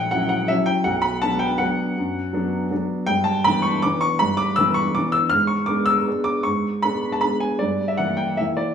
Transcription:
Already playing: A#1 G5
0.11 F#3 C#4 E4 F#5
0.29 F#5
0.48 F#3 C#4 E4 E5
0.66 G5
0.84 B1 F#5
1.02 B5
1.22 F#3 B3 D4 A5
1.39 G5
1.58 F#3 B3 D4 F#5
1.98 F#2
2.33 F#3 B3 D4
2.71 F#3 B3 D4
3.06 G2 G5
3.24 A5
3.44 E3 B3 D4 B5
3.62 C#6
3.82 E3 B3 D4 D6
4.01 C#6
4.19 G2 B5
4.37 D6
4.56 E3 B3 D4 E6
4.74 C#6
4.95 E3 B3 D4 D6
5.12 E6
5.30 G#2 F6
5.47 C#6
5.66 G#3 B3 D4 D6
5.86 E6
6.07 G#3 B3 D4
6.24 D6
6.43 G#2 C#6
6.82 G#3 B3 D4 B5
7.12 A5
7.21 G#3 B3 D4 B5
7.40 G#5
7.59 G2 D5
7.88 E5
7.98 E3 A#3 E4 F#5
8.17 G5
8.37 E3 A#3 E4 E5
8.57 D5

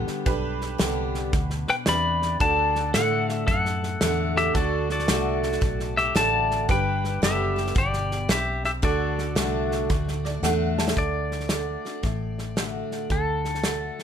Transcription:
Already playing: D3 G3 B3 D4 G4 B4
0.07 snare
0.26 B1 G2 D4 G4 B4, kick, snare
0.61 snare
0.78 C2 D3 G3 B3 G4, snare, hi-hat pedal
1.15 snare
1.32 D2 B2, kick, snare
1.50 snare
1.68 B4 G5, muted fingered electric bass stroke, snare
1.86 E2 C3 D4 G4 B4 D5 B5, snare, hi-hat pedal
2.22 snare
2.40 D2 D3 D4 F#4 A4 D5 A5, kick, snare
2.75 snare
2.94 A2 D3 A3 D4 F#4 A4 F#5, snare, hi-hat pedal
3.29 snare
3.47 F#2 A2 A4 F#5, kick, snare
3.66 snare
3.83 snare
4.01 E2 D3 A3 D4 F#4, snare, hi-hat pedal
4.37 G4 E5, snare
4.54 D2 D3 D4 F#4 A4 D5, kick, snare
4.90 F#4 D5, snare
4.99 snare
5.08 C2 D3 A3 D4 F#4, snare, hi-hat pedal
5.43 snare
5.52 snare
5.61 B1 A2, kick, snare
5.80 snare
5.97 G4 E5, snare
6.15 A1 D3 A3 D4 F#4 D5 A5, snare, hi-hat pedal
6.51 snare
6.69 G1 G2 D4 G4 B4 G5, kick, snare
7.04 snare
7.22 F#1 D3 G3 B3 G4 E5, snare, hi-hat pedal
7.56 B3 G4, snare
7.67 snare
7.75 G1 B2 D5, kick, snare
7.79 G4
7.93 snare
8.11 snare
8.29 B1 C4 G4 E5, snare, hi-hat pedal
8.64 G4 E5, snare
8.82 D2 D3 D4 F#4 A4 D5, kick, snare
9.18 snare
9.35 C2 D3 A3 D4 F#4, snare, hi-hat pedal
9.72 snare
9.89 D2 A2, kick, snare
10.08 snare
10.25 D5, snare
10.42 E2 D3 A3 D4 F#4 F#5, snare, hi-hat pedal
10.78 A5, snare
10.88 snare
10.96 D2 D3 D5, kick, snare
11.31 snare
11.40 snare
11.49 D3 A3 D4 F#4, snare, hi-hat pedal
11.85 D4 F#4, snare
12.03 A1 A2, kick, snare
12.38 snare
12.56 D3 A3 D4 F#4, snare, hi-hat pedal
12.92 snare
13.10 D2 D3 A4, kick, snare
13.45 snare
13.55 snare
13.63 D3 A3 D4 F#4, snare, hi-hat pedal
13.99 snare

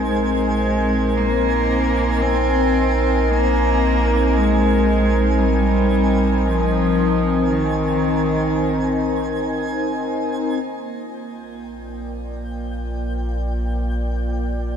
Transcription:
Already playing: A#1 C4 D#4 A#4 C5 G#5
0.08 G#3
1.17 A#3
2.22 C4
3.30 A#3
4.37 G#3
5.39 G3
6.46 F3
7.49 D#3
10.62 A#1 A#3 G5
10.81 F4
11.79 D5

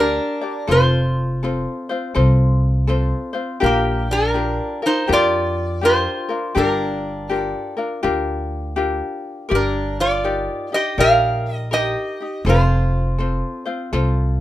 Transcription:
Already playing: D2 D4 G4 A#4
0.00 D4 A#4 D5
0.41 D4 G4 D5
0.67 F1 C4 F4 A4 C5
0.72 C5
1.43 C4 F4 A4 C5
1.89 C4 F4 C5
2.15 C2 C4 F4 A4 C5
2.87 C4 F4 A4 C5
3.33 C4 F4 C5
3.60 A#1 A#3 D4 F4 G4 A#4
3.66 G4
4.11 D4 A#4
4.34 D4 F4 G4 A#4
4.82 D#4 F4 A#4
4.87 C5
5.07 F2 D4 F4 G4 A#4
5.13 F4 D5
5.81 D4 F4 G4 A#4 C5
5.86 F4
6.29 D4 F4 A#4
6.55 G1 D4 F4 G4 A#4
7.29 D4 F4 G4 A#4
7.34 A4
7.77 D4 F4 A#4
8.03 D2 D4 F4 G4 A#4
8.76 D4 F4 G4 A#4
9.49 G1 G4 A#4 D5
9.55 D4 A#4
10.00 F4 D5
10.24 D#4 G4 A#4 D5
10.72 D#4 G4 D#5
10.98 A#1 D#4 G4 A#4 D5 F5
11.55 D#5
11.71 D#4 G4 A#4 D#5
12.20 D#4 G4
12.45 F1 C4 F4 A4 C5
12.49 F4 C5
13.18 C4 F4 A4 C5
13.66 C4 F4 C5
13.93 C2 C4 F4 A4 C5

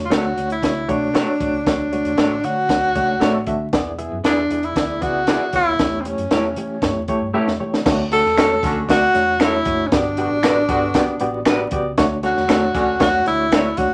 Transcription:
Already playing: D3
0.05 F4
0.10 D2 A3 D4 F#4 C#5, snare, closed hi-hat
0.37 D2 A3 D4 F#4 C#5, closed hi-hat
0.50 E4, closed hi-hat
0.63 C#2 A3 D4 F#4 C#5, kick, snare, closed hi-hat
0.88 B1 A3 D4 F#4 C#5, kick, closed hi-hat
1.14 A3 D4 F#4 C#5, snare, closed hi-hat
1.40 A1 A3 D4 F#4 C#5, kick, closed hi-hat
1.53 C#2
1.67 D2 D3 A3 D4 F#4 C#5, kick, snare, closed hi-hat
1.92 A3 D4 F#4 C#5, closed hi-hat
2.05 E2, closed hi-hat
2.17 A1 A3 D4 F#4 C#5, snare, closed hi-hat
2.44 D3 A3 D4 F#4 C#5, closed hi-hat
2.69 D2 A3 D4 F#4 C#5, kick, snare, closed hi-hat
2.95 C#2 A3 D4 F#4 C#5, kick, closed hi-hat
3.20 A1 A3 D4 F#4 C#5, snare, closed hi-hat
3.47 D3 A3 D4 F#4 E5, kick, closed hi-hat
3.73 E2 E3 B3 E4 G#4 D5, kick, snare, closed hi-hat
3.99 B3 E4 G#4 E5, closed hi-hat
4.12 F#2
4.24 E2 B3 D4 E4 G#4 D5, snare, closed hi-hat
4.50 E2 B3 E4 G#4 D5, closed hi-hat
4.63 E4, closed hi-hat
4.76 D2 B3 E4 G#4 D5, kick, snare, closed hi-hat
5.01 C#2 B3 E4 F#4 G#4 D5, kick, closed hi-hat
5.27 B3 E4 G#4 D5, snare, closed hi-hat
5.53 D2 B3 E4 G#4 C#5, kick, closed hi-hat
5.66 D#2
5.79 E2 E3 A3 E4 G4 C#5, kick, snare, closed hi-hat
6.00 C4
6.05 A3 C#4 E4 G4 C#5, closed hi-hat
6.18 F#2, closed hi-hat
6.31 E2 A3 E4 G4 C#5, snare, closed hi-hat
6.56 E3 A3 E4 G4 C#5, closed hi-hat
6.82 F#2 A3 E4 G4 C#5, kick, snare, closed hi-hat
6.95 E2
7.08 A3 E4 G4 C#5, kick, closed hi-hat
7.21 G2
7.34 A3 E4 G4 C#5 E5
7.47 E2, snare
7.60 E3 A3 E4 G4 C#5
7.74 snare
7.85 D2 D3 A3 D4 F#4 C#5, kick, snare, crash
8.11 D3 A3 C#4 D4 F#4 A4, closed hi-hat
8.24 E2, snare
8.37 D3 A3 C#4 D4 F#4 A4 C#5, finger snap, snare, closed hi-hat
8.63 D2 D3 A3 C#4 D4 F#4 A4, kick, closed hi-hat
8.89 A3 D4 F#4 D5, kick, snare, closed hi-hat
9.14 E2 A3 D4 F#4 C#5, closed hi-hat
9.40 A3 C#4 D4 F#4 A4 C#5, finger snap, snare, closed hi-hat
9.45 E4
9.65 F#1 A3 D4 F#4 C#5, kick, closed hi-hat
9.87 C#4
9.92 G1 G2 B3 F#4 G4 D5, kick, snare, closed hi-hat
9.96 D4
10.17 D3 B3 F#4 G4 D5, closed hi-hat
10.31 A1
10.43 D3 B3 D4 F#4 G4 B4 D5, finger snap, snare, closed hi-hat
10.68 G1 D3 B3 F#4 G4 D5, kick, closed hi-hat
10.94 B3 F#4 G4 D5, kick, snare, closed hi-hat
11.08 muted fingered electric bass stroke
11.20 A1 B3 F#4 G4 D5, closed hi-hat
11.45 B3 D4 F#4 G4 B4 D5, finger snap, snare, closed hi-hat
11.71 C#2 B3 F#4 G4 D5, kick, closed hi-hat
11.98 D2 D3 A3 D4 F#4 C#5, kick, snare, closed hi-hat
12.22 D3 A3 C#4 D4 F#4 C#5, closed hi-hat
12.37 E2, snare
12.48 D3 A3 C#4 D4 F#4 C#5, finger snap, snare, closed hi-hat
12.74 D2 D3 A3 C#4 D4 F#4 D5, kick, closed hi-hat
13.00 E2 A3 D4 F#4 C#5, kick, snare, closed hi-hat
13.26 D2 A3 D4 E4 F#4 C#5, closed hi-hat
13.52 A3 D4 F#4 C#5, finger snap, snare, closed hi-hat
13.77 D#2 A3 D4 F#4 C#5, kick, closed hi-hat

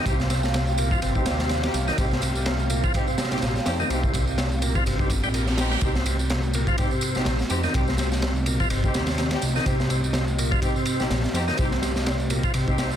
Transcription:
Already playing: C4 G4 F5
0.06 C2 C3 C4 D#4 G4, kick, ride, tambourine
0.20 snare, tambourine
0.30 C3, snare, ride, tambourine
0.43 snare, tambourine
0.54 C3, snare, ride, tambourine
0.67 tambourine
0.78 A#2, ride, tambourine
0.91 F3, kick, tambourine
1.02 G1 C3, ride, tambourine
1.15 C3 C4 D#4 G4, kick, tambourine
1.26 D#2 C4 D#4 G4, snare, ride, tambourine
1.39 snare, ride, tambourine
1.49 snare, ride, tambourine
1.63 C4 D#4 G4, snare, ride, tambourine
1.74 C2, snare, ride, tambourine
1.88 D#3, snare, tambourine
1.98 C2 C3 C4 D#4 G4, kick, ride, tambourine
2.11 snare, tambourine
2.22 C3, ride, tambourine
2.35 tambourine
2.46 C3, snare, ride, tambourine
2.59 tambourine
2.70 A#2, ride, tambourine
2.83 F3, kick, tambourine
2.94 C3 C4 D#4 G4, kick, ride, tambourine
3.07 C3, tambourine
3.18 snare, ride, tambourine
3.24 snare, ride
3.31 A#1 C4 D#4 G4, snare, ride, tambourine
3.37 snare, ride
3.42 A#1, snare, ride, tambourine
3.56 snare, tambourine
3.66 F2 C4 D#4 G4, snare, ride, tambourine
3.80 D#3, tambourine
3.90 C2 C3 C4 D#4 G4, ride, tambourine
4.03 kick, tambourine
4.14 C3, kick, ride, tambourine
4.28 tambourine
4.38 C3, snare, ride, tambourine
4.51 tambourine
4.62 A#2, ride, tambourine
4.75 F3, kick, tambourine
4.86 G1 C3, ride, tambourine, reverse cymbal
4.99 C3 C4 D#4 G4, kick, tambourine
5.10 kick, ride, tambourine
5.23 A#1 G3, tambourine
5.34 A#2, ride, tambourine
5.47 snare, tambourine
5.58 C4 D#4 G4, snare, ride, tambourine
5.71 G3, snare, tambourine
5.81 C2 C3 C4 D#4 G4 D#5, kick, ride, tambourine
5.95 snare, tambourine
6.06 C3, ride, tambourine
6.19 tambourine
6.30 C3, snare, ride, tambourine
6.43 tambourine
6.54 A#2, ride, tambourine
6.67 F3, kick, tambourine
6.78 C3 C4 D#4 G4, kick, ride, tambourine
6.91 C3, tambourine
7.01 ride, tambourine
7.15 A#1 C4 D#4 G4, snare, tambourine
7.25 A#1, snare, ride, tambourine
7.39 snare, tambourine
7.50 F2 C4 D#4 G4, snare, ride, tambourine
7.63 D#3, snare, tambourine
7.74 C2 C3 C4 D#4 G4, kick, ride, tambourine
7.88 snare, tambourine
7.98 C3, snare, ride, tambourine
8.12 snare, tambourine
8.22 C3, snare, ride, tambourine
8.36 tambourine
8.46 A#2, ride, tambourine
8.60 F3, kick, tambourine
8.70 G1 C3, ride, tambourine
8.84 C3 C4 D#4 G4, kick, tambourine
8.94 D#2 C4 D#4 G4, snare, ride, tambourine
9.07 snare, ride, tambourine
9.18 snare, ride, tambourine
9.31 C4 D#4 G4, snare, ride, tambourine
9.41 C2, snare, ride, tambourine
9.56 D#3, snare, tambourine
9.66 C2 C3 C4 D#4 G4, kick, ride, tambourine
9.80 snare, tambourine
9.90 C3, ride, tambourine
10.04 tambourine
10.13 C3, snare, ride, tambourine
10.28 tambourine
10.39 A#2, ride, tambourine
10.51 F3, kick, tambourine
10.62 C3 C4 D#4 G4, kick, ride, tambourine
10.76 C3, tambourine
10.86 ride, tambourine
11.00 A#1 C4 D#4 G4, snare, tambourine
11.10 A#1, snare, ride, tambourine
11.24 snare, tambourine
11.34 F2 C4 D#4 G4, snare, ride, tambourine
11.48 D#3, snare, tambourine
11.58 C2 C3 C4 D#4 G4, kick, ride, tambourine
11.71 snare, tambourine
11.82 C3, snare, ride, tambourine
11.96 snare, tambourine
12.06 C3, snare, ride, tambourine
12.20 tambourine
12.30 A#2, ride, tambourine
12.43 F3, kick, tambourine
12.54 C2 C3, ride, tambourine
12.67 C3 C4 D#4 G4, kick, tambourine
12.78 C4 D#4 G4, snare, ride, tambourine
12.91 tambourine

